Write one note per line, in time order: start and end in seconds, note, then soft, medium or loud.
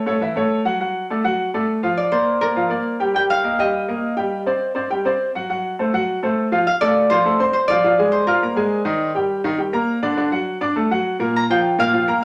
0.00 0.43 C5 medium
0.06 0.18 A3 medium
0.06 0.19 A4 medium
0.06 0.19 C#5 medium
0.21 0.33 E3 medium
0.21 0.34 E4 medium
0.21 0.34 E5 medium
0.36 0.60 A3 medium
0.36 0.60 A4 medium
0.36 0.60 C#5 medium
0.65 0.77 F#3 medium
0.65 0.77 F#4 medium
0.65 0.77 F#5 medium
0.80 1.04 F#3 medium
0.80 1.04 F#4 medium
0.80 1.05 F#5 medium
1.10 1.22 A3 medium
1.10 1.22 A4 medium
1.10 1.22 D5 medium
1.24 1.48 F#3 medium
1.24 1.48 F#4 medium
1.24 1.48 F#5 medium
1.54 1.78 A3 medium
1.54 1.78 A4 medium
1.54 1.78 D5 medium
1.83 2.07 F3 medium
1.83 2.07 F4 medium
1.83 2.07 F5 medium
1.97 3.66 D5 medium
2.12 2.36 A#3 medium
2.12 2.36 A#4 medium
2.12 4.10 C5 medium
2.12 2.36 D5 medium
2.41 2.53 A#3 medium
2.41 4.53 A#4 medium
2.41 2.53 A#4 medium
2.41 2.54 D5 medium
2.56 2.68 F3 medium
2.56 2.68 F4 medium
2.56 2.68 F5 medium
2.69 2.94 A#3 medium
2.69 2.94 A#4 medium
2.69 2.95 D5 medium
3.00 3.12 G3 medium
3.00 3.12 G4 medium
3.00 3.12 G5 medium
3.14 3.38 G3 medium
3.14 3.39 G4 medium
3.14 3.39 G5 medium
3.14 3.22 G5 loud
3.30 4.96 F5 loud
3.44 3.56 A#3 medium
3.44 3.56 A#4 medium
3.44 3.56 D#5 medium
3.59 3.83 G3 medium
3.59 3.83 G4 medium
3.59 5.38 D#5 medium
3.59 3.83 G5 medium
3.88 4.12 A#3 medium
3.88 4.12 A#4 medium
3.88 4.13 D#5 medium
4.17 4.41 G3 medium
4.17 4.41 G4 medium
4.17 4.41 G5 medium
4.46 4.70 C4 medium
4.46 4.71 C5 medium
4.46 4.71 D5 medium
4.75 4.87 C4 medium
4.75 4.87 C5 medium
4.75 4.88 D5 medium
4.90 5.02 G3 medium
4.90 5.02 G4 medium
4.90 5.03 G5 medium
5.05 5.29 C4 medium
5.05 5.29 C5 medium
5.05 5.30 D5 medium
5.35 5.47 F#3 medium
5.35 5.47 F#4 medium
5.35 5.47 F#5 medium
5.49 5.73 F#3 medium
5.49 5.74 F#4 medium
5.49 5.74 F#5 medium
5.79 5.91 A3 medium
5.79 5.91 A4 medium
5.79 5.91 C5 medium
5.93 6.17 F#3 medium
5.93 6.18 F#4 medium
5.93 6.18 F#5 medium
6.23 6.47 A3 medium
6.23 6.47 A4 medium
6.23 6.47 C5 medium
6.52 6.64 F3 medium
6.52 6.64 F4 medium
6.52 6.64 F5 medium
6.67 6.73 F5 medium
6.81 7.05 A3 medium
6.81 7.05 A4 medium
6.81 7.67 D5 loud
6.81 7.05 A5 medium
7.10 7.22 F3 medium
7.10 7.23 F4 medium
7.10 7.53 C5 medium
7.10 7.23 F5 medium
7.25 7.37 A3 medium
7.25 7.37 A4 medium
7.25 7.38 A5 medium
7.39 7.63 C4 medium
7.39 7.64 C5 medium
7.39 7.64 C6 medium
7.53 7.59 C5 medium
7.68 7.81 F3 medium
7.68 7.81 F4 medium
7.68 9.52 D5 loud
7.68 7.81 F5 medium
7.84 7.96 F3 medium
7.84 7.96 F4 medium
7.84 7.96 F5 medium
7.99 8.23 G#3 medium
7.99 8.23 G#4 medium
7.99 8.23 G#5 medium
8.12 10.10 C5 medium
8.27 8.39 F4 medium
8.27 10.39 A#4 medium
8.27 8.39 F5 medium
8.27 8.40 F6 medium
8.43 8.54 A#3 medium
8.43 8.54 A#4 medium
8.43 8.55 A#5 medium
8.56 8.80 G#3 medium
8.56 8.81 G#4 medium
8.56 8.81 G#5 medium
8.85 9.09 D#3 medium
8.85 9.09 D#4 medium
8.85 9.09 D#5 medium
9.15 9.39 G3 medium
9.15 9.39 G4 medium
9.15 9.39 G5 medium
9.44 9.56 D#3 medium
9.44 9.56 D#4 medium
9.44 9.56 D#5 medium
9.58 9.70 G3 medium
9.58 9.71 G4 medium
9.58 9.71 G5 medium
9.73 9.97 A#3 medium
9.73 9.97 A#4 medium
9.73 9.97 A#5 medium
10.03 10.15 D3 medium
10.03 10.15 D4 medium
10.03 10.15 D5 medium
10.17 10.29 D3 medium
10.17 10.29 D4 medium
10.17 10.29 D5 medium
10.32 10.56 F#3 medium
10.32 10.56 F#4 medium
10.32 10.56 F#5 medium
10.61 10.73 D4 medium
10.61 10.73 D5 medium
10.61 10.74 D6 medium
10.76 10.88 A3 medium
10.76 10.88 A4 medium
10.76 10.88 A5 medium
10.91 11.15 F#3 medium
10.91 11.15 F#4 medium
10.91 11.15 F#5 medium
11.19 11.43 A#2 medium
11.19 11.44 A#3 medium
11.19 11.44 A#4 medium
11.36 11.42 A#5 loud
11.50 11.73 F3 medium
11.50 11.74 F4 medium
11.50 11.74 F5 medium
11.50 12.24 G5 loud
11.79 11.90 A#2 medium
11.79 11.90 A#3 medium
11.79 11.91 A#4 medium
11.79 12.22 F5 loud
11.93 12.05 F3 medium
11.93 12.05 F4 medium
11.93 12.05 F5 medium
12.08 12.24 A#3 medium
12.08 12.24 A#4 medium
12.08 12.24 A#5 medium